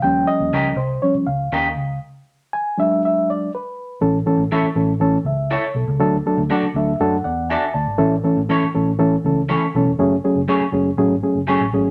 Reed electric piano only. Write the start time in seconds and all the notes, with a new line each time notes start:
0.02 F3 G3 C#4 G5
0.27 D#5
0.77 C5
1.02 F3 G3 C#4 C#5
1.27 F5
2.53 G#5
2.77 F#3 G#3 D4 E5
3.05 E5
3.30 D5
3.55 B4
4.01 E3 A3 C#4 A4
4.26 E3 A3 C#4 A4
4.51 E3 A3 C#4 A4
4.76 E3 A3 C#4 A4
5.00 E3 A3 C#4 A4
5.26 E5
5.51 C#5
5.76 A4
6.00 F#3 A3 D4 A4
6.26 F#3 A3 D4 A4
6.50 F#3 A3 D4 A4
6.76 F#3 A3 D4 A4 E5
7.00 F#3 A3 D4 A4 F#5
7.24 D5 F#5
7.50 E5 G#5
7.74 D5 A5
7.98 E3 A3 C#4 A4
8.24 E3 A3 C#4 A4
8.49 E3 A3 C#4 A4
8.74 E3 A3 C#4 A4
8.99 E3 A3 C#4 A4
9.25 E3 A3 C#4 A4
9.50 E3 A3 C#4 A4
9.75 E3 A3 C#4 A4
9.99 F#3 A3 C#4 G#4
10.24 F#3 A3 C#4 G#4
10.48 F#3 A3 C#4 G#4
10.73 F#3 A3 C#4 G#4
10.98 F#3 A3 C#4 G#4
11.23 F#3 A3 C#4 G#4
11.48 F#3 A3 C#4 G#4
11.73 F#3 A3 C#4 G#4